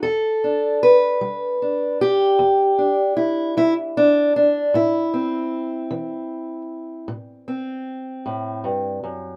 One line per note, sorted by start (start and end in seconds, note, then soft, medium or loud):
0.03 0.74 E2 medium
0.03 0.81 A4 medium
0.44 1.61 D4 soft
0.83 2.00 B4 medium
1.21 1.92 G3 medium
1.62 2.77 D4 soft
2.01 3.16 G4 medium
2.39 3.09 E2 medium
2.78 3.96 D4 soft
3.17 3.56 E4 medium
3.57 4.27 G3 medium
3.57 3.73 E4 loud
3.97 4.35 D4 medium
4.36 4.75 D4 medium
4.74 5.44 A2 medium
4.74 7.09 E4 medium
5.14 7.47 C4 soft
5.91 6.61 E3 medium
7.08 7.79 A2 medium
7.48 9.36 C4 soft
8.26 8.65 A2 medium
8.64 9.03 G2 medium
9.04 9.36 F#2 medium